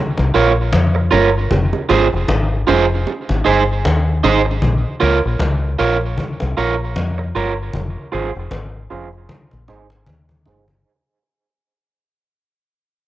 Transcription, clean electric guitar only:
0.34 0.51 F4 medium
0.34 0.51 A#4 medium
0.34 0.52 C#5 medium
0.95 muted clean electric guitar stroke soft
1.11 1.29 F4 medium
1.11 1.29 A#4 medium
1.11 1.29 C#5 medium
1.89 2.07 F4 medium
1.89 2.07 G#4 medium
1.89 2.07 C5 medium
2.67 2.84 F4 medium
2.67 2.85 G#4 medium
2.67 2.85 C5 loud
3.45 3.62 D#4 medium
3.45 3.63 G#4 medium
3.45 3.63 C5 medium
4.24 4.41 D#4 medium
4.24 4.41 G#4 medium
4.24 4.41 C5 medium
4.45 muted clean electric guitar stroke soft
5.00 5.18 F4 medium
5.00 5.18 A#4 medium
5.00 5.18 C#5 medium
5.79 5.96 F4 medium
5.79 5.96 A#4 medium
5.79 5.96 C#5 loud
6.57 6.74 F4 medium
6.57 6.74 A#4 medium
6.57 6.75 C#5 medium
7.18 muted clean electric guitar stroke soft
7.35 7.52 F4 medium
7.35 7.52 A#4 medium
7.35 7.53 C#5 medium
8.12 8.30 F4 medium
8.12 8.30 G#4 medium
8.12 8.30 C5 medium
8.90 9.08 F4 medium
8.90 9.08 G#4 medium
8.90 9.08 C5 medium
9.68 9.86 D#4 medium
9.68 9.86 G#4 medium
9.68 9.86 C5 medium
10.46 10.63 D#4 medium
10.46 10.64 G#4 medium
10.46 10.64 C5 medium
10.69 muted clean electric guitar stroke soft

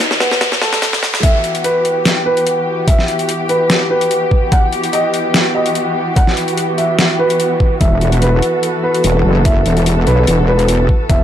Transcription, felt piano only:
0.00 0.13 D#4 medium
0.00 0.13 D#5 loud
0.20 0.49 B3 medium
0.20 0.49 B4 medium
0.62 1.16 A3 medium
0.62 1.16 A4 medium
1.23 1.52 E5 medium
1.64 2.18 B4 medium
2.26 2.80 B4 medium
2.88 3.42 E5 medium
3.49 3.78 B4 medium
3.90 4.44 B4 medium
4.52 4.80 F#5 loud
4.93 5.47 D#5 medium
5.55 6.09 D#5 medium
6.16 6.70 F#5 medium
6.78 7.06 E5 medium
7.19 7.73 B4 medium
7.81 8.09 E5 medium
8.22 8.76 B4 medium
8.83 9.37 B4 medium
9.45 9.99 E5 medium
10.07 10.35 B4 medium
10.48 11.02 B4 medium
11.10 11.24 E5 medium

